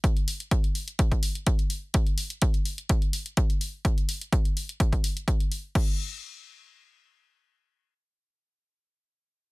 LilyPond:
\new DrumStaff \with { instrumentName = "Drums" } \drummode { \time 4/4 \tempo 4 = 126 <hh bd>16 hh16 hho16 hh16 <hh bd>16 hh16 hho16 hh16 <hh bd>16 <hh bd>16 hho16 hh16 <hh bd>16 hh16 hho8 | <hh bd>16 hh16 hho16 hh16 <hh bd>16 hh16 hho16 hh16 <hh bd>16 hh16 hho16 hh16 <hh bd>16 hh16 hho8 | <hh bd>16 hh16 hho16 hh16 <hh bd>16 hh16 hho16 hh16 <hh bd>16 <hh bd>16 hho16 hh16 <hh bd>16 hh16 hho8 | <cymc bd>4 r4 r4 r4 |
r4 r4 r4 r4 | }